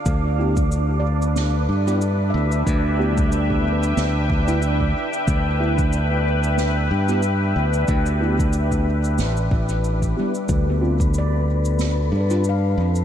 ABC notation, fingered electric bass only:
X:1
M:4/4
L:1/8
Q:"Swing 16ths" 1/4=92
K:Ephr
V:1 name="Fingered electric bass" clef=bass
D,,4- D,, G,,2 D,, | D,,4 D,,3 z | D,,4- D,, G,,2 D,, | D,,4 A,,, A,,,2 z |
D,,4- D,, G,,2 F,, |]